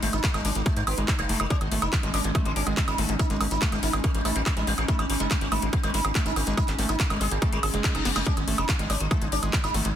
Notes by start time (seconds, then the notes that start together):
Already playing: G#3 D#4
0.03 G#1 G#3 A3, open hi-hat
0.13 G#1 G#3 D#4, closed hi-hat, high woodblock
0.24 G#3, kick, clap, closed hi-hat
0.34 G#1 G#3, closed hi-hat, high woodblock
0.45 G#1 G#3 C#4, open hi-hat
0.55 G#1 G#3, closed hi-hat
0.66 G#3 A3, kick, closed hi-hat, high woodblock
0.76 G#2 G#3, closed hi-hat
0.87 G#1 B3, open hi-hat, high woodblock
0.98 G#1 G#3, closed hi-hat
1.08 G#3, kick, clap, closed hi-hat
1.19 F#1 G#3, closed hi-hat, high woodblock
1.29 F#1 G#3 A3, open hi-hat
1.40 F#1 G#3, closed hi-hat, high woodblock
1.50 G#3 C#4, kick, closed hi-hat
1.61 G#1 D#3, closed hi-hat, high woodblock
1.72 G#1 D#3 A3, open hi-hat
1.82 F#1 G#3 D#4, closed hi-hat, high woodblock
1.93 D#3, kick, clap, closed hi-hat
2.03 G#1 D#3 G#3, closed hi-hat
2.14 G#1 G#3 C#4, open hi-hat, high woodblock
2.24 G#1 D#3, closed hi-hat
2.35 D#3 A3, kick, closed hi-hat, high woodblock
2.45 G#1 D#3 G#3, closed hi-hat
2.56 G#1 C#4, open hi-hat
2.67 G#1 D#3 G#3, closed hi-hat, high woodblock
2.77 D#3, kick, clap, closed hi-hat
2.88 G#1 D#4, closed hi-hat, high woodblock
2.98 G#1 D#3 A3, open hi-hat
3.09 G#1 D#3 G#3, closed hi-hat
3.19 D#4, kick, closed hi-hat, high woodblock
3.30 G#1 G#3, closed hi-hat
3.41 G#1 G#3, open hi-hat, high woodblock
3.51 G#1 D#4, closed hi-hat
3.62 G#3 A3, kick, clap, closed hi-hat
3.72 G#1 G#3, closed hi-hat, high woodblock
3.83 G#1 D#4, open hi-hat
3.93 G#1 G#3, closed hi-hat, high woodblock
4.04 G#3, kick, closed hi-hat
4.15 A1 G#3, closed hi-hat
4.25 A1 A3 D#4, open hi-hat, high woodblock
4.36 A1 G#3, closed hi-hat
4.46 G#3, kick, clap, closed hi-hat, high woodblock
4.57 A1 G#3 D#4, closed hi-hat
4.67 A1 G#3, open hi-hat
4.78 A1 G#3, closed hi-hat, high woodblock
4.88 A3 D#4, kick, closed hi-hat
4.99 G#1 G#3, closed hi-hat, high woodblock
5.10 G#1 G#3, open hi-hat
5.20 F#1 G#3 D#4, closed hi-hat
5.31 G#3, kick, clap, closed hi-hat, high woodblock
5.41 G#1 G#3, closed hi-hat
5.52 G#1 A3 D#4, open hi-hat, high woodblock
5.62 G#1 G#3, closed hi-hat
5.73 G#3, kick, closed hi-hat
5.83 G#1 G#3, closed hi-hat, high woodblock
5.94 G#1 G#3 D#4, open hi-hat
6.05 G#1 G#3, closed hi-hat, high woodblock
6.15 G#3 A3, kick, clap, closed hi-hat
6.26 G#1 G#3 D#4, closed hi-hat
6.36 G#1 G#3, open hi-hat, high woodblock
6.47 G#1 G#3, closed hi-hat
6.57 D#4, kick, closed hi-hat, high woodblock
6.68 G#1 G#3, clap, closed hi-hat
6.79 G#1 G#3 A3, open hi-hat
6.89 G#1 G#3 D#4, closed hi-hat, high woodblock
7.00 G#3, kick, clap, closed hi-hat
7.10 G#1 G#3, closed hi-hat, high woodblock
7.21 G#1 G#3 G#4, open hi-hat
7.31 G#1 G#3, closed hi-hat
7.42 G#3 A3, kick, closed hi-hat, reverse cymbal, high woodblock
7.52 G#1 G#3, closed hi-hat
7.63 G#1 G#4, open hi-hat, high woodblock
7.74 F#1 G#3, closed hi-hat
7.84 G#3, kick, clap, closed hi-hat
7.95 F#1 D#4 G#4, closed hi-hat, high woodblock
8.05 F#1 G#3 B3, snare, open hi-hat
8.16 F#1 G#3, snare, closed hi-hat, high woodblock
8.26 G#3 C#4 D#4, kick, closed hi-hat
8.37 G#1 D#3, closed hi-hat, high woodblock
8.48 G#1 D#3 A3, open hi-hat
8.58 F#1 G#3 D#4, closed hi-hat, high woodblock
8.69 D#3, kick, clap, closed hi-hat
8.79 G#1 D#3 G#3, closed hi-hat
8.90 G#1 G#3 C#4, open hi-hat, high woodblock
9.00 G#1 D#3, closed hi-hat
9.11 D#3 A3, kick, closed hi-hat, high woodblock
9.21 G#1 D#3 G#3, closed hi-hat
9.32 G#1 C#4, open hi-hat
9.43 G#1 D#3 G#3, closed hi-hat, high woodblock
9.53 D#3, kick, clap, closed hi-hat
9.64 G#1 D#4, closed hi-hat, high woodblock
9.74 G#1 D#3 A3, open hi-hat
9.85 G#1 D#3 G#3, closed hi-hat